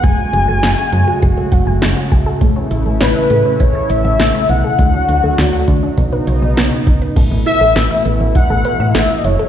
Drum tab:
CC |--------|--------|--------|x-------|
HH |xxxxxxxx|xxxxxxxx|xxxxxxxx|xxxxxxxx|
SD |--o---o-|--o---o-|--o---o-|--o---o-|
BD |o---oo-o|o---o---|o--oo--o|o---o---|